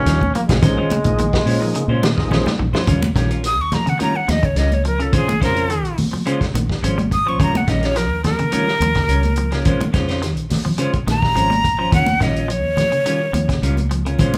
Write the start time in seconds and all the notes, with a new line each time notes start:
Already playing: C#3 F3 A#3 C#4 D#4 G4
0.06 D#2 G3 C#4 F4 A#4, snare, closed hi-hat, low conga
0.21 muted clean electric guitar stroke, kick, high conga
0.35 F3 A#3, muted clean electric guitar stroke, closed hi-hat, high conga
0.48 A#1 C#3 G#3 C#4 F4 A#4, kick, snare, closed hi-hat, high conga
0.62 A#1 F3 G#3 A#3 C#4 D#4 G#4 C5, muted clean electric guitar stroke, kick, snare, closed hi-hat, low conga
0.77 D#3 G#3 C#4 F4 C5
0.90 C#3, muted fingered electric bass stroke, muted clean electric guitar stroke, closed hi-hat, high conga
1.04 A#1 F3 A#3 D#4 G#4, muted clean electric guitar stroke, kick, closed hi-hat, high conga
1.18 D#3, closed hi-hat, high conga
1.33 muted clean electric guitar stroke, kick, snare
1.45 A#2 G#3 C#4 F4 C5, open hi-hat
1.60 F3 A#3 D#4 G#4, muted clean electric guitar stroke
1.74 C#3, muted clean electric guitar stroke, closed hi-hat
1.88 A#2 G#3 C#4 F4 C5
2.03 D#3, muted clean electric guitar stroke, snare, closed hi-hat, high conga
2.17 A#1 F3 A#3 D#4 G#4, kick, snare
2.30 F3 G#3 C#4 F4 C5, snare, low conga
2.46 G3, muted clean electric guitar stroke, snare, high conga
2.58 A#1, muted clean electric guitar stroke, mid tom
2.73 F3 C#4 F4 C5, snare, high conga
2.87 D#2 C#3 G3 C#4 F4 A#4, kick, closed hi-hat, low conga
3.02 muted clean electric guitar stroke, closed hi-hat, high conga
3.15 A#1 D#3 G3 C#4 F4 A#4, kick, snare, closed hi-hat
3.30 C#4 F4 A#4, closed hi-hat
3.43 D#6, muted clean electric guitar stroke, snare, closed hi-hat
3.59 D#2 C#6
3.72 F3 A#5, muted clean electric guitar stroke, snare, closed hi-hat, high conga, low conga
3.86 C#3 F#5, muted clean electric guitar stroke, closed hi-hat, low conga
3.99 D#3 G3 C#4 F4 A#4 A#5, closed hi-hat, high conga
4.15 F#5, muted clean electric guitar stroke
4.27 D#2 F3 D#5, muted clean electric guitar stroke, snare, closed hi-hat, high conga
4.43 C#3 C#5, kick, closed hi-hat
4.55 C#2 G3 C#4 F4 A#4 D#5, snare, closed hi-hat
4.71 C#5, muted clean electric guitar stroke, closed hi-hat, high conga
4.84 F3 A#4, muted clean electric guitar stroke, closed hi-hat
4.99 C#3 C#4 F4 A4 A#4, closed hi-hat
5.12 A#1 G#3 C#4 F4 G#4 C5, kick, closed hi-hat, low conga
5.28 D#3, muted clean electric guitar stroke, closed hi-hat, high conga
5.40 F2 C#3 G#3 C#4 F4 A#4 C5, kick, snare, closed hi-hat
5.55 C#4 F4 C5, closed hi-hat
5.69 D#3, muted clean electric guitar stroke, closed hi-hat
5.84 A#1, closed hi-hat
5.98 muted clean electric guitar stroke, open hi-hat, high conga, low conga
6.11 F3, muted clean electric guitar stroke, high conga
6.26 C#3 G#3 C#4 F4 C5, closed hi-hat
6.40 muted clean electric guitar stroke, kick, snare, closed hi-hat
6.54 A#1 D#3, muted clean electric guitar stroke, closed hi-hat, high conga
6.70 kick, snare
6.83 G#1 F3 G#3 C#4 F4 C5, closed hi-hat
6.97 G3, muted clean electric guitar stroke, closed hi-hat, high conga
7.11 D#6, muted clean electric guitar stroke, kick, closed hi-hat, high conga
7.26 F3 C#4 F4 C5 C#6
7.39 D#2 C#3 G3 C#4 F4 A#4 A#5, kick, closed hi-hat, low conga
7.54 F#5, muted clean electric guitar stroke, closed hi-hat, high conga
7.67 A#1 D#3 G3 C#4 A#4 D#5, kick, snare, closed hi-hat
7.81 C#4 F4 A#4, snare, closed hi-hat
7.85 C#5
7.95 F3 A#4, muted clean electric guitar stroke, snare, closed hi-hat
8.10 D#2
8.24 F3 A#4, muted clean electric guitar stroke, snare, closed hi-hat, high conga, low conga
8.38 C#3, muted clean electric guitar stroke, closed hi-hat, low conga
8.52 D#3 G3 C#4 F4 A#4, closed hi-hat, high conga
8.67 muted clean electric guitar stroke, snare
8.80 D#2 F3, muted clean electric guitar stroke, closed hi-hat, high conga
8.95 C#3, kick, snare, closed hi-hat
9.08 C#2 G3 C#4 A#4, muted clean electric guitar stroke, closed hi-hat
9.23 muted clean electric guitar stroke, closed hi-hat, high conga
9.36 F3, muted clean electric guitar stroke, closed hi-hat, high conga
9.51 C#3 C#4 F4 A#4, snare, closed hi-hat
9.65 A#1 G#3 C#4 F4 C5, kick, closed hi-hat, low conga
9.80 D#3, muted clean electric guitar stroke, closed hi-hat, high conga
9.93 F2 C#3 G#3 C#4 F4 C5, kick, snare, closed hi-hat
10.08 C#4 F4 C5, snare, closed hi-hat
10.22 D#3, muted clean electric guitar stroke, snare, closed hi-hat
10.37 A#1, closed hi-hat
10.50 muted clean electric guitar stroke, snare, open hi-hat, high conga, low conga
10.65 F3, muted clean electric guitar stroke, low conga
10.78 C#3 G#3 C#4 F4 C5, closed hi-hat
10.93 muted clean electric guitar stroke, kick, closed hi-hat
11.07 A#1 D#3 A#5, muted clean electric guitar stroke, snare, closed hi-hat, high conga
11.22 kick, snare
11.34 G#1 F3 G#3 C#4 F4 C5, closed hi-hat
11.50 G3, muted clean electric guitar stroke, closed hi-hat, high conga
11.64 muted clean electric guitar stroke, kick, closed hi-hat
11.78 F3 C#4 F4 C5
11.92 D#2 C#3 C#4 F4 A#4 F#5, muted clean electric guitar stroke, kick, closed hi-hat, low conga
12.06 muted clean electric guitar stroke, closed hi-hat, high conga
12.20 A#1 D#3 G3 C#4 F4 A#4 D#5, kick, snare, closed hi-hat
12.36 C#4 F4, closed hi-hat
12.48 F3 C#5, muted clean electric guitar stroke, closed hi-hat
12.63 D#2
12.77 F3, muted clean electric guitar stroke, snare, closed hi-hat, high conga, low conga
12.92 C#3, muted clean electric guitar stroke, closed hi-hat
13.05 D#3 G3 C#4 F4 A#4, closed hi-hat
13.21 muted clean electric guitar stroke
13.33 D#2 F3, muted clean electric guitar stroke, closed hi-hat, high conga
13.49 C#3, kick, snare, closed hi-hat
13.62 C#2 G3 C#4 F4 A#4, closed hi-hat
13.77 muted clean electric guitar stroke, closed hi-hat, high conga
13.91 F3, muted clean electric guitar stroke, closed hi-hat
14.05 C#3 C#4 F4 A#4, closed hi-hat
14.19 A#1 G#3 C#4 F4 C5, kick, closed hi-hat, low conga
14.34 D#3, muted clean electric guitar stroke, closed hi-hat, high conga